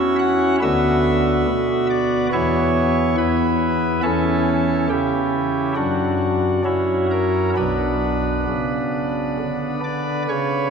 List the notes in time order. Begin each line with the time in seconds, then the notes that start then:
Already playing: C#4 E4 F#4 E5
0.19 F#5
0.62 D2 D3 B3 F#4 E5
1.47 B2
1.90 D5
2.33 E2 E3 B3 E4 C#5
3.17 E2 B4
4.03 E2 E3 C#4 E4 A4
4.89 C#3 G4
5.76 F#2 F#3 D4 F#4
6.65 F#2 F#3 C#4 E4
7.11 A#4
7.57 B1 B2 B3 D4 B4
8.49 C#3
9.39 D3
9.84 D5
10.29 C#3 C#5